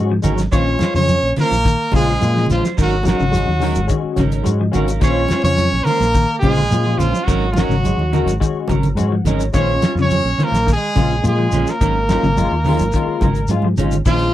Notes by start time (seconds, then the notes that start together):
Already playing: G#2 G#3 C#4 F#4
0.12 F3
0.22 G#1 F#3 G#3 C#4 D#4 F#4 A#4, closed hi-hat, low conga, shekere
0.38 snare, closed hi-hat, high conga, shekere
0.51 A#1 D#3 G#3 C#4 F4 C5 C#5, muted clean electric guitar stroke, kick, closed hi-hat, shekere
0.79 G#3 C#4 F4 C5, snare, closed hi-hat, high conga, shekere
0.94 F2 C#3 C#4 C#5, snare, high conga, shekere
1.08 closed hi-hat, high conga, shekere
1.22 A#1
1.36 D#3 G#3 C#4 F4 C5, muted fingered electric bass stroke, snare, closed hi-hat, low conga, shekere
1.41 A#3 A#4
1.51 A#1, closed hi-hat, high conga, shekere
1.65 D#3, kick, closed hi-hat, shekere
1.92 A#1 C#3 G#3 C#4 F4 C5, kick, closed hi-hat, high conga, shekere
1.96 G#3 G#4
2.08 C#4 F4 C5, shekere
2.20 A#2 G#3 C#4 F4, closed hi-hat, high conga, shekere
2.35 F3, snare
2.46 A#1, closed hi-hat, low conga, shekere
2.50 F3 G#3 C#4 F4 C5
2.61 C#4 F4 C5, high conga, shekere
2.66 snare
2.77 G#1 D#3 F#3 C#4 D#4 A#4, kick, closed hi-hat, shekere
2.82 F#3 F#4
3.03 F#3 G#3 C#4 D#4 F#4 A#4, closed hi-hat, high conga, shekere
3.08 F#3 F#4, snare
3.20 G#1 C#3, shekere
3.31 G#3 C#4 F#4, closed hi-hat, high conga, shekere
3.46 D#2, high conga
3.59 D#3 F#3 G#3 C#4 F#4 A#4, muted clean electric guitar stroke, snare, open hi-hat, low conga, shekere
3.75 G#1, closed hi-hat, shekere
3.87 D#3 G#3 C#4 F#4, kick, closed hi-hat, shekere
4.04 muted fingered electric bass stroke
4.16 G#1 C#3 F#3 C#4 D#4 A#4 C#5, kick, snare, closed hi-hat, high conga, shekere
4.31 C#4 D#4 A#4, closed hi-hat, shekere
4.43 G#2 G#3 C#4 F#4 D#5, closed hi-hat, high conga, shekere
4.61 F3
4.72 G#1 F#3 G#3 C#4 D#4 F#4 F5, closed hi-hat, low conga, shekere
4.76 A#4
4.87 C#4 D#4, closed hi-hat, high conga, shekere
5.00 A#1 D#3 G#3 C#4 F4 C5 C#5, kick, closed hi-hat, shekere
5.28 G#3 C#4 F4, snare, closed hi-hat, high conga, shekere
5.32 C5
5.43 F2 C#3 C#4 C#5, snare, high conga, shekere
5.58 closed hi-hat, high conga, shekere
5.72 A#1, high conga
5.84 D#3 G#3 A#3 C#4 F4 A#4 C5, closed hi-hat, low conga, shekere
6.00 A#1, closed hi-hat, high conga, shekere
6.15 D#3, kick, closed hi-hat, shekere
6.39 A#1 C#3 G#3 C#4 G#4, high conga
6.43 G#3 F4 C5, kick, closed hi-hat, shekere
6.56 low conga, shekere
6.71 A#2 G#3 C#4 F4, closed hi-hat, high conga, shekere
6.86 F3
6.97 A#1 F3 G#3 C#4 F4 C5, closed hi-hat, low conga, shekere
7.13 C#4 F4 C5, high conga, shekere
7.23 F#3 C#4 F#4
7.28 G#1 D#3 D#4 A#4, kick, snare, closed hi-hat, shekere
7.52 F#3 G#3 C#4 F#4, high conga
7.56 F#3 C#4 D#4 A#4, snare, closed hi-hat, shekere
7.68 G#1 C#3, high conga, shekere
7.73 snare
7.84 G#3 C#4 F#4, closed hi-hat, high conga, shekere
7.97 D#2, high conga
8.12 D#3 F#3 G#3 C#4 D#4 F#4 A#4, closed hi-hat, low conga, shekere
8.25 G#1, closed hi-hat, high conga
8.29 shekere
8.40 D#3 G#3 C#4 F#4, kick, closed hi-hat, shekere
8.54 muted fingered electric bass stroke
8.68 G#1 C#3 F#3 C#4 A#4 A#5, muted clean electric guitar stroke, kick, closed hi-hat, high conga, shekere
8.83 closed hi-hat, low conga, shekere
8.95 G#2 G#3 C#4 F#4 F#5, closed hi-hat, high conga, shekere
9.12 F3
9.24 G#1 F#3 G#3 C#4 D#4 A#4 C#5, closed hi-hat, low conga, shekere
9.40 closed hi-hat, shekere
9.52 A#1 D#3 G#3 C#4 F4 C5 C#5, kick, snare, closed hi-hat, shekere
9.58 C#4
9.82 G#3 C#4 F4, snare, closed hi-hat, high conga, shekere
9.95 F2 C#3, snare, high conga, shekere
10.02 C#4 C#5
10.10 closed hi-hat, high conga, shekere
10.24 A#1, high conga
10.38 D#3 G#3 C#4 F4 C5, muted fingered electric bass stroke, closed hi-hat, low conga, shekere
10.44 A#3 A#4
10.52 A#1, snare, closed hi-hat, high conga, shekere
10.67 D#3, kick, snare, closed hi-hat, shekere
10.72 G#3 G#4
10.96 A#1 C#3 G#3 C#4 F4 C5, kick, snare, closed hi-hat, high conga, shekere
11.10 shekere
11.22 A#2 G#3 C#4 F4, closed hi-hat, high conga, shekere
11.27 G#4
11.31 G#3
11.39 F3
11.52 A#1 G#3 C#4 F4 C5, closed hi-hat, low conga, shekere
11.67 A#4, snare, shekere
11.73 A#3
11.81 G#1 D#3 F#3 C#4 D#4 A#4, kick, closed hi-hat, shekere
12.09 F#3 G#3 C#4 D#4 F4 A#4, snare, closed hi-hat, high conga, shekere
12.23 G#1 C#3, high conga, shekere
12.37 G#3 C#4 F4, closed hi-hat, high conga, shekere
12.51 D#2
12.65 D#3 F#3 G#3 C#4 D#4 F4 A#4, open hi-hat, low conga, shekere
12.79 G#1, closed hi-hat, high conga, shekere
12.92 D#3 G#3 C#4 F4, kick, closed hi-hat, shekere
13.07 muted fingered electric bass stroke
13.21 G#1 C#3 F#3 D#4 A#4, kick, closed hi-hat, high conga, shekere
13.35 closed hi-hat, shekere
13.48 G#2 G#3 C#4 F4, closed hi-hat, high conga, shekere
13.62 F3, high conga
13.77 G#1 F#3 G#3 C#4 D#4 F4, closed hi-hat, low conga, shekere
13.91 closed hi-hat, low conga, shekere
14.05 A#1 D#3 F3 G#3 C#4 F4 C5, kick, crash, shekere
14.19 closed hi-hat